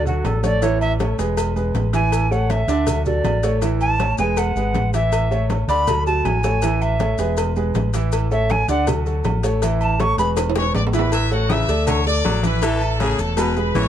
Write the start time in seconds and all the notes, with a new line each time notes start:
Already playing: D2
0.05 F#3 F#4 A4, high conga, low conga, maracas
0.24 A1 A4, cowbell, high conga, low timbale, low agogo, maracas
0.43 A3 A4 C#5 D5, cowbell, high conga, maracas
0.62 E3 E4 C#5 E5, cowbell, high conga, low agogo, maracas
0.81 E5, high conga, low agogo, maracas
1.00 A3 A4 C#5, cowbell, high conga, low timbale, low agogo, maracas
1.18 E1 G#3 G#4 B4, cowbell, high conga, maracas
1.37 cowbell, high conga, low agogo, maracas
1.56 G#3 G#4 B4, high conga, maracas
1.74 A1, cowbell, high conga, low timbale, low agogo, maracas
1.93 E3 E4 E5 G#5, cowbell, high conga, maracas
2.12 cowbell, high conga, low agogo, maracas
2.31 A3 A4 C#5 F#5, high conga, maracas
2.50 E5, cowbell, high conga, low timbale, low agogo, maracas
2.67 D2 D3 D4 D5, cowbell, high conga, maracas
2.87 F#3 A4, cowbell, high conga, low conga, low agogo, maracas
3.06 F#3 F#4 A4 D5, high conga, low conga, maracas
3.24 A1, cowbell, high conga, low timbale, low agogo, maracas
3.43 A3 A4 C#5, cowbell, maracas
3.62 E3 E4 E5, cowbell, high conga, low agogo, maracas
3.81 A5, high conga, low agogo, maracas
3.99 A3 A4 C#5, cowbell, high conga, low timbale, low agogo, maracas
4.18 E1 G#3 G#4 B4 G#5, cowbell, high conga, maracas
4.37 F#5, cowbell, high conga, low agogo, maracas
4.55 G#1 G#3 G#4 B4, high conga, maracas
4.74 A1, cowbell, high conga, low timbale, low agogo, maracas
4.93 E3 E4 E5, cowbell, high conga, maracas
5.12 cowbell, high conga, low agogo, maracas
5.31 A3 A4 C#5, high conga, maracas
5.50 cowbell, high conga, low timbale, low agogo, maracas
5.68 D2 D3 D4 D5 B5, cowbell, high conga, maracas
5.87 F#3 F#4 A4, cowbell, high conga, low conga, low agogo, maracas
6.07 F#3 F#4 A4 A5, high conga, maracas
6.24 A1 G#5, cowbell, high conga, low timbale, low agogo, maracas
6.44 A3 A4 C#5, cowbell, high conga, maracas
6.62 E3 E4 E5, cowbell, high conga, low agogo, maracas
6.81 E5, high conga, low agogo, maracas
7.00 A3 A4 C#5, cowbell, high conga, low timbale, low agogo, maracas
7.18 E1 G#3 G#4 B4, cowbell, high conga, maracas
7.37 cowbell, high conga, low agogo, maracas
7.56 G#3 G#4 B4, high conga, maracas
7.75 A1, cowbell, high conga, low timbale, low agogo, maracas
7.94 E3 E4 E5, cowbell, high conga, maracas
8.12 cowbell, high conga, low agogo, maracas
8.31 A3 A4 C#5 E5, high conga, maracas
8.50 G#5, cowbell, high conga, low timbale, low agogo, maracas
8.68 D2 D3 D4 D5 F#5, cowbell, high conga, maracas
8.87 F#3 F#4 A4, cowbell, high conga, low conga, low agogo, maracas
9.06 F#3 F#4 A4, high conga, maracas
9.24 A1, cowbell, high conga, low timbale, low agogo, maracas
9.43 A3 A4 C#5, cowbell, maracas
9.62 E3 E4 E5, cowbell, high conga, low agogo, maracas
9.81 A5, high conga, low agogo, maracas
9.99 A3 A4 C#5 C#6, cowbell, high conga, low timbale, low agogo, maracas
10.17 E1 G#3 G#4 B4 B5, cowbell, high conga, maracas
10.37 cowbell, high bongo, high conga, high timbale, low agogo, maracas
10.50 high timbale
10.55 G#3 G#4 B4 C#5 C#6, high bongo, high conga, maracas
10.62 high timbale
10.74 A1 D5 D6, cowbell, high conga, low timbale, low agogo, maracas
10.87 low timbale
10.93 E3 E4 B4 E5 B5, cowbell, low bongo, maracas
10.99 low timbale
11.12 E3 E5 E6, cowbell, high conga, low agogo, maracas
11.31 A3 F#4 A4 C#5 F#5, high conga, maracas
11.50 C#3 E3 E4 E5 E6, cowbell, high conga, low timbale, low agogo, maracas
11.68 D2 A3 A4 D5, cowbell, high conga, maracas
11.87 D3 C#5 C#6, cowbell, high conga, low conga, low agogo, maracas
12.06 A3 A4 D5 D6, high conga, maracas
12.25 A1 F#3, cowbell, high conga, low timbale, low agogo, maracas
12.43 E3 E4 B4 E5 B5, cowbell, high conga, maracas
12.62 E3 E4 A4 E5 A5, cowbell, low agogo, maracas
12.81 high conga, low agogo, maracas
13.00 C#3 A3 G#4 A4 C#5 G#5, cowbell, high conga, low timbale, low agogo, maracas
13.19 E1 A4 A5, cowbell, high conga, maracas
13.37 B2 G#3 G#4 B4 B5, cowbell, high conga, low agogo, maracas
13.56 G#3 G#4 B4 B5, high conga, maracas
13.75 A1 E3 C#5 C#6, cowbell, high conga, low timbale, low agogo, maracas